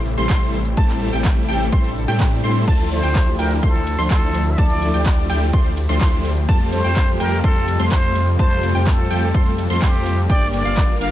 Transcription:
Already playing: A1 C3 G3 A3 E4 G4
0.06 open hi-hat
0.18 A1 G3 A3 C4 E4 C5 C6, closed hi-hat
0.29 C6, kick, clap, closed hi-hat
0.42 closed hi-hat
0.53 open hi-hat
0.65 closed hi-hat
0.77 A1 G3 A3 C4 E4 A4 A5, kick, closed hi-hat
0.89 clap, closed hi-hat
1.01 open hi-hat
1.13 A1 G3 A3 C4 E4 G4 G5, closed hi-hat
1.25 kick, clap, closed hi-hat
1.37 open hi-hat
1.49 A1 G3 A3 C4 E4 G4 G5, open hi-hat
1.61 closed hi-hat
1.72 G3 A3 C4 E4 C5 C6, kick, closed hi-hat, swell
1.84 closed hi-hat
1.96 open hi-hat
2.08 A2 G3 A3 C4 E4 G4 G5, closed hi-hat
2.20 kick, clap, closed hi-hat
2.32 closed hi-hat
2.44 A2 G3 A3 C4 E4 C5 C6, open hi-hat
2.56 closed hi-hat
2.67 D2 D3 F3 A3 D4 E4 A4 A5, kick, closed hi-hat, crash, ride
2.80 closed hi-hat
2.91 C5, open hi-hat, ride
3.03 D2 F3 A3 D4 E4 G4 G5, closed hi-hat
3.15 kick, clap, closed hi-hat, ride
3.27 closed hi-hat
3.39 D2 F3 A3 D4 E4 G4 A#4 G5, open hi-hat, ride
3.51 closed hi-hat
3.56 A#4
3.63 D2 F3 A3 D4 E4 A4 C5 C6, kick, closed hi-hat, ride
3.75 closed hi-hat
3.87 open hi-hat, ride
3.98 D2 F3 A3 D4 E4 C5 C6, closed hi-hat
4.10 D2 A4 C6, kick, clap, closed hi-hat, ride
4.22 closed hi-hat
4.34 open hi-hat, ride
4.46 closed hi-hat
4.51 E5
4.58 F3 A3 D4 E4 G4 A4 D5 A5, kick, closed hi-hat, ride
4.70 closed hi-hat
4.82 open hi-hat, ride
4.94 D2 F3 A3 D4 E4 G4 G5, closed hi-hat
5.06 kick, clap, closed hi-hat, ride
5.18 open hi-hat
5.30 D2 F3 A3 D4 E4 G4 G5, open hi-hat, ride
5.42 closed hi-hat
5.53 D2 F3 A3 D4 E4 C6, kick, closed hi-hat, ride
5.65 closed hi-hat
5.77 open hi-hat, ride
5.89 D2 F3 A3 D4 E4 C5 C6, closed hi-hat
6.01 F3 E4 C5 C6, kick, clap, closed hi-hat, ride
6.13 closed hi-hat
6.25 open hi-hat, ride
6.37 closed hi-hat
6.49 F2 C3 G3 A3 C4 F4 A4 A5, kick, closed hi-hat, ride
6.61 closed hi-hat
6.72 C5, open hi-hat, ride
6.84 F2 G3 A3 C4 F4 G4 G5, closed hi-hat
6.96 kick, clap, closed hi-hat, ride
7.08 closed hi-hat
7.20 F2 G3 A3 C4 F4 G4 A#4 G5, open hi-hat, ride
7.32 closed hi-hat
7.44 F2 G3 A3 C4 F4 A4 C5 C6, kick, closed hi-hat, ride
7.56 closed hi-hat
7.68 open hi-hat, ride
7.79 F2 G3 A3 C4 F4 C5 C6, closed hi-hat
7.91 F4 C5 C6, kick, clap, closed hi-hat, ride
8.04 closed hi-hat
8.15 open hi-hat, ride
8.27 closed hi-hat
8.39 F2 G3 A3 C4 F4 A4 C5 A5, kick, closed hi-hat, ride
8.51 closed hi-hat
8.63 open hi-hat, ride
8.75 F2 G3 A3 C4 F4 G4 G5, closed hi-hat
8.87 A4, kick, clap, closed hi-hat, ride
8.99 open hi-hat
9.10 F2 G3 A3 C4 F4 G4 G5, open hi-hat, ride
9.23 closed hi-hat
9.34 G3 A3 C4 F4 C5 C6, kick, closed hi-hat, ride
9.46 closed hi-hat
9.58 open hi-hat, ride
9.70 F2 G3 A3 C4 F4 C5 C6, closed hi-hat
9.82 G3 C4 F4 G4 C5 C6, kick, clap, closed hi-hat, ride
9.94 closed hi-hat
10.06 open hi-hat, ride
10.18 closed hi-hat
10.30 G1 D3 A#3 D4 G4 A#4 D5 G5, kick, closed hi-hat, ride
10.42 closed hi-hat
10.53 D5, open hi-hat, ride
10.65 G1 A#3 D4 F4 F5, closed hi-hat
10.77 kick, clap, closed hi-hat, ride
10.89 closed hi-hat
11.01 G1 A#3 D4 F4 F5, open hi-hat, ride

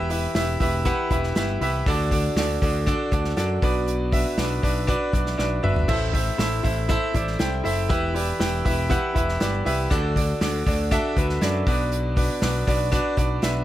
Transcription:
Already playing: E1 E3 E4 G4 B4 E5
0.10 E4 G4 B4 E5, hi-hat pedal, open hi-hat
0.35 E1 E4 G4 B4 E5, snare, hi-hat pedal, open hi-hat
0.60 E1 E4 G4 B4 E5, kick, hi-hat pedal, open hi-hat
0.85 E4 G4 B4 F#5, kick, hi-hat pedal, open hi-hat
1.10 E1 E4 G4 B4 E5 B5, kick, hi-hat pedal, open hi-hat
1.23 snare
1.35 G1 E4 G4 B4 E5, snare, hi-hat pedal, open hi-hat
1.61 C2 E4 G4 B4 E5, hi-hat pedal, open hi-hat
1.86 D2 D3 D4 F#4 A4 D5, kick, hi-hat pedal, open hi-hat
2.11 D4 F#4 A4 D5, kick, hi-hat pedal, open hi-hat
2.36 D2 D4 F#4 A4 D5, snare, hi-hat pedal, open hi-hat
2.62 D2 D4 F#4 A4 D5, kick, hi-hat pedal, open hi-hat
2.86 D4 F#4 A4 D5, kick, hi-hat pedal, open hi-hat
3.12 D2 D4 F#4 A4 D5, kick, hi-hat pedal, open hi-hat
3.24 snare
3.37 F#2 D4 F#4 A4 D5, snare, hi-hat pedal, open hi-hat
3.62 B1 B2 D4 F#4 B4 D5, kick, hi-hat pedal, open hi-hat
3.88 hi-hat pedal, open hi-hat
4.12 D4 F#4 B4 E5, kick, hi-hat pedal, open hi-hat
4.38 B1 D4 F#4 B4 D5, snare, hi-hat pedal, open hi-hat
4.62 B1 D4 F#4 B4 D5, kick, hi-hat pedal, open hi-hat
4.87 D4 F#4 B4 D5, kick, hi-hat pedal, open hi-hat
5.12 B1 D4 F#4 B4 D5, kick, hi-hat pedal, open hi-hat
5.26 snare
5.37 B1 D4 F#4 B4 D5, snare
5.63 G1 D4 F#4 B4 E5, mid tom
5.76 floor tom
5.88 A1 A2 E4 A4 C5 E5, kick, crash
6.13 E4 A4 C5 E5, kick, hi-hat pedal, open hi-hat
6.38 A1 E4 A4 C5 E5, snare, hi-hat pedal, open hi-hat
6.63 A1 E4 A4 C5 E5, kick, hi-hat pedal, open hi-hat
6.89 E4 A4 C5 E5, kick, hi-hat pedal, open hi-hat
7.14 A1 E4 A4 C5 D5, kick, hi-hat pedal, open hi-hat
7.27 snare
7.39 C2 E4 A4 C5 G5, snare, hi-hat pedal, open hi-hat
7.64 F#1 E4 A4 C5 E5, hi-hat pedal, open hi-hat
7.89 E1 E3 E4 G4 B4 E5, kick, hi-hat pedal, open hi-hat
8.14 E4 G4 B4 D5, hi-hat pedal, open hi-hat
8.39 E1 E4 G4 B4 G5, snare, hi-hat pedal, open hi-hat
8.65 E1 E4 G4 B4 E5, kick, hi-hat pedal, open hi-hat
8.90 E4 G4 B4 F#5, kick, hi-hat pedal, open hi-hat
9.15 E1 E4 G4 B4 E5, kick, hi-hat pedal, open hi-hat
9.29 snare
9.40 G1 E4 G4 B4 D5, snare, hi-hat pedal, open hi-hat
9.65 C2 E4 G4 B4 E5, hi-hat pedal, open hi-hat
9.90 D2 D3 D4 F#4 A4 D5, kick, hi-hat pedal, open hi-hat
10.16 D4 F#4 A4 D5, kick, hi-hat pedal, open hi-hat
10.41 D2 D4 F#4 A4 D5, snare, hi-hat pedal, open hi-hat
10.66 D2 D4 F#4 A4 D5, kick, hi-hat pedal, open hi-hat
10.91 D4 F#4 A4 E5, kick, hi-hat pedal, open hi-hat
11.16 D2 D4 F#4 A4 B4, kick, hi-hat pedal, open hi-hat
11.29 snare
11.41 F#2 D4 F#4 A4 D5, snare, hi-hat pedal, open hi-hat
11.66 B1 B2 D4 F#4 B4 D5, kick, hi-hat pedal, open hi-hat
11.92 hi-hat pedal, open hi-hat
12.16 D4 F#4 B4 D5, kick, hi-hat pedal, open hi-hat
12.42 B1 D4 F#4 B4 D5, snare, hi-hat pedal, open hi-hat
12.67 B1 D4 F#4 B4 D5, kick, hi-hat pedal, open hi-hat
12.92 D4 F#4 B4 D5, kick, hi-hat pedal, open hi-hat
13.17 B1 D4 F#4 B4 D5, kick, hi-hat pedal, open hi-hat
13.42 B1 D4 F#4 B4 E5, snare, hi-hat pedal, open hi-hat

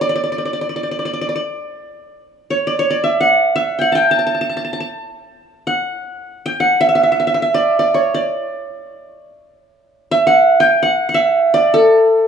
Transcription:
0.01 D5
0.09 D5
0.16 D5
0.24 D5
0.32 D5
0.38 D5
0.45 D5
0.53 D5
0.61 D5
0.69 D5
0.76 D5
0.83 D5
0.91 D5
0.99 D5
1.05 D5
1.13 D5
1.21 D5
1.29 D5
1.36 D5
2.50 C#5
2.67 D5
2.79 C#5
2.90 D5
3.04 E5
3.21 F#5
3.56 E5
3.79 F#5 G5
3.92 G5 A5
4.11 A5
4.19 A5
4.27 A5
4.34 A5
4.41 A5
4.49 A5
4.57 A5
4.65 A5
4.73 A5
4.80 A5
5.67 F#5
6.46 G5
6.60 F#5
6.81 E5
6.89 E5
6.95 E5
7.03 E5
7.12 E5
7.20 E5
7.27 E5
7.34 E5
7.42 E5
7.54 D5
7.79 D5
7.94 C#5
8.14 D5
10.11 E5
10.27 F#5
10.60 G5
10.83 F#5
11.09 F#5
11.14 E5
11.54 D5
11.74 A4

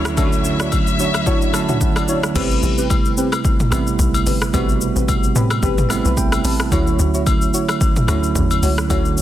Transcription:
Already playing: D2 D3 F#3 A3 C#4 E4 C#5
0.05 cross-stick, shaker
0.16 D3 F#3 A3 C#4 D4 E4 F#4 C#5 E5, kick, high agogo, shaker
0.26 F#4
0.32 shaker
0.45 shaker
0.60 D4 E4 F#4 C#5, cross-stick, shaker
0.72 kick, high agogo, shaker
0.87 shaker
0.99 D4 E4 F#4 C#5, shaker
1.14 cross-stick, high agogo, shaker
1.26 D4 E4 F#4 C#5, kick, shaker
1.42 shaker
1.52 D3 F#3 A3 C#4 E4 A5, cross-stick, high agogo, shaker
1.69 D4 E4 F#4 C#5, mid tom, shaker
1.81 F#5, kick, shaker
1.96 D5, cross-stick, high agogo, shaker
2.08 D4 E4 F#4 C#5, shaker
2.23 cross-stick, shaker
2.34 A1 C3 G3 A3 B3 C4 E4 G4 B4, kick, crash, high agogo, shaker
2.51 shaker
2.63 A1, shaker
2.78 C4 G4 B4, shaker
2.90 kick, high agogo, shaker
3.05 shaker
3.17 C4 G4 B4, shaker
3.32 cross-stick, high agogo, shaker
3.45 kick, shaker
3.60 mid tom, shaker
3.71 A1 C3 G3 A3 B3 C4 E4 G4 B4, cross-stick, high agogo, shaker
3.87 shaker
3.99 B1, kick, shaker
4.14 high agogo, shaker
4.26 G1 C4 G4 B4, open hi-hat, shaker
4.42 cross-stick, shaker
4.52 A1 B2 G3 A3 B3 C4 F#4 G4 B4, kick, high agogo, shaker
4.59 C3
4.69 shaker
4.81 shaker
4.96 A1 C4 G4 B4, shaker
5.08 kick, high agogo, shaker
5.23 shaker
5.35 A2 C4 G4 B4, shaker
5.50 cross-stick, high agogo, shaker
5.63 A1 C4 G4 B4, kick, shaker
5.78 mid tom, shaker
5.89 G3 A3 B3 C4 E4 E5, cross-stick, high agogo, shaker
6.05 B1 C4 G4 B4, shaker
6.17 G5, kick, shaker
6.32 cross-stick, high agogo, shaker
6.44 A1 C4 G4 B4 A5, open hi-hat, shaker
6.60 cross-stick, shaker
6.70 D2 D3 F#3 A3 C#4 E4 F#4 C#5, kick, high agogo, shaker
6.87 shaker
6.99 D2, shaker
7.14 E4 F#4 C#5, shaker
7.26 kick, high agogo, shaker
7.42 shaker
7.53 E4 F#4 C#5, shaker
7.69 cross-stick, high agogo, shaker
7.81 kick, shaker
7.96 mid tom, shaker
8.07 D2 D3 F#3 A3 C#4 E4 F#4 C#5, cross-stick, high agogo, shaker
8.23 shaker
8.35 E2, kick, shaker
8.51 high agogo, shaker
8.63 C#2 E4 F#4 C#5, open hi-hat, shaker
8.78 cross-stick, shaker
8.89 D2 D3 F#3 A3 C#4 E4 F#4 C#5, kick, high agogo, shaker
9.05 shaker
9.18 shaker

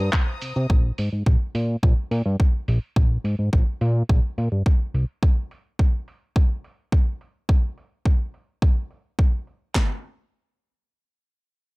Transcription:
Already playing: C5 A#5 D#6
0.00 G2
0.13 kick, clap, shaker
0.42 C3, open hi-hat, shaker
0.56 C3, shaker
0.70 A#1, kick
0.98 G#2, open hi-hat
1.13 G#2
1.26 A#1, kick
1.55 A#2, open hi-hat
1.83 A#1, kick
2.11 A#2, open hi-hat
2.26 G2
2.40 kick
2.68 A#1, open hi-hat
2.96 A#1, kick
3.24 G#2, open hi-hat
3.39 G#2
3.53 A#1, kick
3.81 A#2, open hi-hat
4.09 A#1, kick
4.38 A#2, open hi-hat
4.52 G2
4.66 kick
4.94 C2, open hi-hat
5.23 kick
5.51 open hi-hat
5.79 kick
6.08 open hi-hat
6.36 kick
6.64 open hi-hat
6.92 kick
7.21 open hi-hat
7.49 kick
7.78 open hi-hat
8.06 kick
8.34 open hi-hat
8.62 kick
8.91 open hi-hat
9.19 kick
9.47 open hi-hat
9.75 kick, snare, clap

